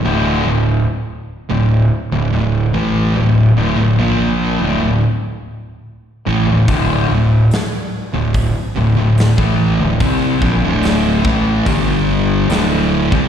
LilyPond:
<<
  \new Staff \with { instrumentName = "Distorted electric guitar" } { \clef bass \time 4/4 \key d \minor \tempo 4 = 72 <d, a, d>8 <d, a,>8 r8. <d, a,>8 r16 <d, a,>16 <d, a,>8 <a, e a>8 <d, a,>16~ | <d, a,>16 <d, a,>16 <d, a,>16 <bes, f bes>8. <d, a,>16 <d, a,>16 r4. <a, e>16 <d, a,>16 | <d, a, d>8 <d, a,>8 r8. <d, a,>8 r16 <d, a,>16 <d, a,>8 <a, e a>8 <d, a,>16 | <c g c'>8 <bes, f>16 <d, a, d>8. <a, e a>8 <g, d g>4 <d, a, d>8. <c g>16 | }
  \new Staff \with { instrumentName = "Distorted electric guitar" } { \clef bass \time 4/4 \key d \minor <d, a, d>8 <d, a,>8 r8. <d, a,>8 r16 <d, a,>16 <d, a,>8 <a, e a>8 <d, a,>16~ | <d, a,>16 <d, a,>16 <d, a,>16 <bes, f bes>8. <d, a,>16 <d, a,>16 r4. <a, e>16 <d, a,>16 | <d, a, d>8 <d, a,>8 r8. <d, a,>8 r16 <d, a,>16 <d, a,>8 <a, e a>8 <d, a,>16 | <c g c'>8 <bes, f>16 <d, a, d>8. <a, e a>8 <g, d g>4 <d, a, d>8. <c g>16 | }
  \new Staff \with { instrumentName = "Fingered electric bass" } { \clef bass \time 4/4 \key d \minor d,,8 d,,8 r8. d,,8 r16 d,,16 d,,8 a,,8 d,,16~ | d,,16 d,,16 d,,16 bes,,8. d,,16 d,,16 r4. a,,16 d,,16 | d,,8 d,,8 r8. d,,8 r16 d,,16 d,,8 a,,8 d,,16 | c,8 bes,,16 d,,8. a,,8 g,,4 d,,8. c,16 | }
  \new DrumStaff \with { instrumentName = "Drums" } \drummode { \time 4/4 r4 r4 r4 r4 | r4 r4 r4 r4 | <hho bd>4 <hho sn>4 <hho bd>4 <hho sn>16 bd8. | <hho bd>8 bd8 <hho sn>8 bd8 <hho bd>4 <hho sn>8. bd16 | }
>>